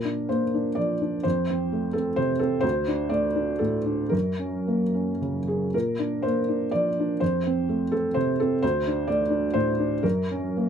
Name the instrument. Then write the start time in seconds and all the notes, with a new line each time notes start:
felt piano
Already playing: A#2 A#4
0.05 D4
0.29 A#3 C5
0.54 D4
0.75 F3 D5
1.02 D4
1.23 F2 C5
1.50 C4
1.72 A3
1.93 C4 A4
2.16 C3 C5
2.39 C4 A4
2.61 D2 C5
2.88 D4
3.09 A3 D5
3.35 D4
3.59 A2 A4
3.86 D4
4.09 F#2 A#4
4.39 C#4
4.67 A#3
4.94 C#4
5.21 C#3
5.47 C#4 G#4
5.74 A#2 A#4
5.99 D4
6.22 A#3 C5
6.48 D4
6.71 F3 D5
7.00 D4
7.20 F2 C5
7.46 C4
7.69 A3
7.92 C4 A4
8.14 C3 C5
8.40 C4 A4
8.62 D2 C5
8.87 D4
9.08 A3 D5
9.30 D4
9.54 A2 C5
9.80 D4
10.03 F#2 A#4
10.31 C#4
10.57 A#3